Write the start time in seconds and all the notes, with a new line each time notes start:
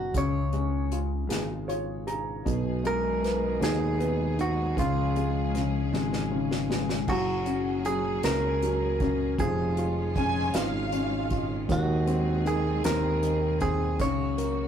Already playing: F#1 B2 F#3 D#4 F#4
0.14 C#2 C#3 C#5, kick, closed hi-hat
0.53 G#3, closed hi-hat
0.92 F4, closed hi-hat
1.29 G#1 G#4, snare, closed hi-hat
1.68 F4 C#5, closed hi-hat
2.07 G#4 A#5, closed hi-hat
2.45 B1 B2 D#3 G#3 B3 G#4, kick, closed hi-hat
2.84 G#3 A#4, closed hi-hat
3.23 B3, snare, closed hi-hat
3.60 D#2 D#4 G#4, snare, closed hi-hat
3.99 B3, closed hi-hat
4.38 D#4 F#4, closed hi-hat
4.76 C#2 C#3 F3 C#4 F4, kick, closed hi-hat
5.16 G#3, closed hi-hat
5.54 C#3, snare, closed hi-hat
5.93 G#1 G#3, snare
6.13 snare
6.31 C#3
6.51 snare
6.70 G#3, snare
6.89 snare
7.08 F#1 F#3 A#3 C#4 F#4 G#4, kick, crash
7.46 C#4, closed hi-hat
7.85 F#3 G#4, closed hi-hat
8.23 C#2 C#4 A#4, snare, closed hi-hat
8.62 F#3, closed hi-hat
9.00 C#4, kick, closed hi-hat
9.38 F1 D#3 F3 G#3 C#4 F4 G#4, kick, closed hi-hat
9.77 F4, closed hi-hat
10.16 C#4 G#5, kick, closed hi-hat
10.54 G#1 F4 F5, snare, closed hi-hat
10.92 C#4, closed hi-hat
11.30 F4, kick, closed hi-hat
11.69 D#2 D#3 C4 F#4 G#4, kick, closed hi-hat
12.07 C4, closed hi-hat
12.46 D#3 G#4, closed hi-hat
12.84 D#2 C4 A#4, snare, closed hi-hat
13.23 D#3, closed hi-hat
13.60 C4 G#4, kick, closed hi-hat
13.99 C#2 C#3 F#3 A#3 F#4 C#5, kick, closed hi-hat
14.38 A#4, closed hi-hat